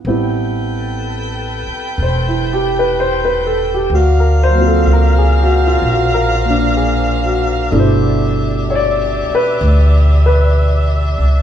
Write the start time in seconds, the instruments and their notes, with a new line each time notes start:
0.05 upright bass A1, grand piano G3 B3 C4 E4, saxophone section B4 G5
0.09 saxophone section A4
1.67 muted upright bass stroke
1.98 upright bass E1
2.02 grand piano C5
2.28 grand piano E4
2.53 grand piano G4
2.79 grand piano B4
3.00 grand piano C5
3.25 grand piano B4
3.46 grand piano A4
3.74 grand piano G4
3.90 upright bass D2, saxophone section C5
3.94 saxophone section D4 A#4 F5, grand piano F#4
4.20 grand piano A#4
4.43 grand piano C5
4.50 grand piano F#3 A#3
4.58 grand piano C4 F4
4.67 grand piano A4
4.86 upright bass C#2
4.93 grand piano A#4
5.18 grand piano G#4
5.43 grand piano F#4
5.67 grand piano F4
5.82 upright bass A#1
5.92 grand piano F#4
6.14 grand piano A#4
6.30 grand piano A#4
6.45 grand piano A#3 D4
6.77 grand piano G#4
7.26 grand piano F#4
7.71 upright bass G1, grand piano B2 A3 D4 E4, saxophone section G4 D5 E5
7.79 grand piano C5
8.70 grand piano C#5
8.75 grand piano D5
9.30 muted upright bass stroke
9.35 grand piano B4
9.61 upright bass D2
10.26 grand piano B4
11.18 upright bass C#2